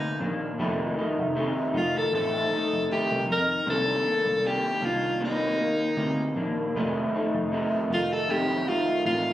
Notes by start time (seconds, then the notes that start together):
Already playing: D2 C3 A#3 D#4
0.20 A#1 D#3 A#3 D4
0.59 F1 F2 C3 D#3 A3 D#4
0.98 D#3 A3 D#4
1.19 F1
1.35 C3 D#3 A3 D#4
1.74 F1 D#3 A3 D#4 F4
1.98 A4
2.13 A1 F2 C3 D#3 A3 D#4 A4
2.52 D#3 A3 D#4, muted picked electric bass stroke
2.73 F1
2.89 C3 D#3 A3 D#4 G4, muted picked electric bass stroke
3.12 C2
3.27 F2 D#3 D#4
3.32 A#4
3.66 C2 C3 D#3 A#3 D4 A4
4.04 D#3 A#3 D4
4.26 C2
4.43 C3 D#3 A#3 D4 G4
4.81 C2 D#3 A#3 D4 F4
5.20 C3 D#3 A#3
5.24 D#4
5.60 D#3 A#3
5.97 D2 C3 A#3
6.36 A#1 D#3 A#3 D4
6.75 F1 F2 C3 D#3 A3 D#4
7.14 D#3 A3 D#4
7.34 F1
7.52 C3 D#3 A3 D#4
7.90 F1 D#3 A3 D#4 F4
8.13 A4
8.29 F2 C3 D#3 A3 D#4 G4
8.67 D#3 A3 D#4 F4
9.05 A1 C3 D#3 A3 D#4 F4